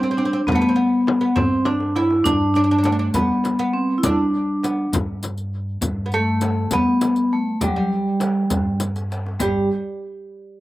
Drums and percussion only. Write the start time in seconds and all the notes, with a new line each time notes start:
0.05 tombak ka
0.48 tombak dum, frame drum
0.78 tombak ka
1.07 tombak tek, frame drum
1.37 frame drum, tombak dum
1.52 tombak ka
1.65 tombak tek, frame drum
1.80 tombak ka
1.96 tombak tek
2.10 tombak ka
2.25 riq, tombak dum, frame drum
2.55 riq, tombak ka
2.84 riq, tombak tek, frame drum
3.14 riq, tombak dum, frame drum
3.29 tombak ka
3.44 riq, tombak tek, frame drum
3.59 riq, tombak ka
4.03 riq, frame drum, tombak dum
4.34 tombak ka
4.63 riq, tombak tek, frame drum
4.93 riq, tombak dum, frame drum
5.09 tombak ka
5.23 riq, frame drum
5.37 riq, tombak ka
5.82 riq, frame drum, tombak dum
6.12 riq, tombak ka
6.41 riq, tombak tek, frame drum
6.71 riq, frame drum, tombak dum
6.87 tombak ka
7.01 riq, tombak tek, frame drum
7.16 riq, tombak ka
7.61 riq, frame drum, tombak dum
7.91 tombak ka
8.20 riq, tombak tek, frame drum
8.50 riq, frame drum, tombak dum
8.67 tombak ka
8.80 riq, tombak tek, frame drum
8.96 riq, tombak ka
9.12 riq, tombak tek
9.26 tombak ka
9.40 riq, frame drum, tombak dum